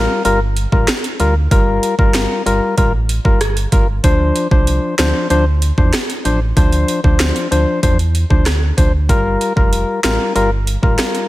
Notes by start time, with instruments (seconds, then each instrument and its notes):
Already playing: synth stab G3 F4 A#4
0.25 sub bass G1, synth stab G3 F4 A#4, closed hi-hat
0.57 closed hi-hat
0.72 sub bass A1, synth stab G3 F4 A#4, kick
0.88 cross-stick, snare, closed hi-hat
1.04 closed hi-hat
1.20 sub bass D2, synth stab G3 F4 A#4, closed hi-hat
1.51 sub bass G1, synth stab G3 F4 A#4, kick, closed hi-hat
1.83 closed hi-hat
1.99 sub bass G1, synth stab G3 F4 A#4, kick
2.14 snare, closed hi-hat
2.46 sub bass G1, synth stab G3 F4 A#4, closed hi-hat
2.77 sub bass A1, synth stab G3 F4 A#4, kick, closed hi-hat
3.09 closed hi-hat
3.25 sub bass G1, synth stab G3 F4 A#4, kick
3.41 cross-stick, closed hi-hat
3.57 closed hi-hat
3.72 sub bass G1, synth stab G3 F4 A#4, kick, closed hi-hat
4.04 sub bass D2, synth stab F3 D4 C5, kick, closed hi-hat
4.36 closed hi-hat
4.51 sub bass C2, synth stab F3 D4 C5, kick
4.67 closed hi-hat
4.98 sub bass D2, synth stab F3 D4 C5, snare, closed hi-hat
5.30 sub bass D2, synth stab F3 D4 C5, closed hi-hat
5.62 closed hi-hat
5.78 sub bass E2, synth stab F3 D4 C5, kick
5.93 cross-stick, snare, closed hi-hat
6.10 closed hi-hat
6.25 sub bass A1, synth stab F3 D4 C5, closed hi-hat
6.56 sub bass D2, synth stab F3 D4 C5, kick, closed hi-hat
6.72 closed hi-hat
6.88 closed hi-hat
7.04 sub bass D2, synth stab F3 D4 C5, kick
7.20 snare, closed hi-hat
7.36 closed hi-hat
7.51 sub bass D2, synth stab F3 D4 C5, closed hi-hat
7.83 sub bass E2, synth stab F3 D4 C5, kick, closed hi-hat
7.99 closed hi-hat
8.15 closed hi-hat
8.30 sub bass D2, synth stab F3 D4 C5, kick
8.46 cross-stick, snare, closed hi-hat
8.77 sub bass D2, synth stab F3 D4 C5, kick, closed hi-hat
9.09 sub bass G1, synth stab G3 F4 A#4, kick, closed hi-hat
9.41 closed hi-hat
9.56 sub bass F1, synth stab G3 F4 A#4, kick
9.73 closed hi-hat
10.04 sub bass A1, synth stab G3 F4 A#4, snare, closed hi-hat
10.35 sub bass G1, synth stab G3 F4 A#4, closed hi-hat
10.67 closed hi-hat
10.83 sub bass A1, synth stab G3 F4 A#4, kick
10.99 cross-stick, snare, closed hi-hat
11.15 closed hi-hat